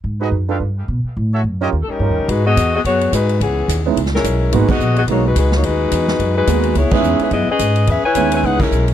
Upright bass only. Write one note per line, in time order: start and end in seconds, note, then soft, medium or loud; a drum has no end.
0.04 0.31 G#2 medium
0.31 0.59 F#2 medium
0.60 0.88 G2 medium
0.88 1.04 B2 medium
1.04 muted upright bass stroke soft
1.17 1.43 A2 medium
1.44 1.71 F#2 medium
1.73 1.88 D#2 medium
1.99 2.11 G2 medium
2.09 2.18 D#2 soft
2.18 2.28 C#2 medium
2.28 2.56 G#2 medium
2.57 2.84 E2 medium
2.84 3.12 F#2 medium
3.12 3.40 G#2 medium
3.40 3.68 C#2 medium
3.68 3.96 D#2 medium
3.96 4.23 C#2 medium
4.24 4.51 B1 medium
4.52 4.68 G#1 medium
4.79 5.07 A#1 medium
5.08 5.35 B1 medium
5.35 5.62 C#2 medium
5.63 5.91 D#2 medium
5.92 6.19 E2 medium
6.19 6.46 F#2 medium
6.47 6.74 D#2 medium
6.75 6.91 C#2 medium
6.91 muted upright bass stroke soft
7.03 7.19 E2 medium
7.20 muted upright bass stroke soft
7.31 7.47 F#2 medium
7.48 muted upright bass stroke soft
7.59 7.87 G#2 medium
7.87 8.03 E2 medium
8.03 muted upright bass stroke soft
8.15 8.43 D#2 medium
8.43 8.71 C#2 medium
8.71 8.94 B1 medium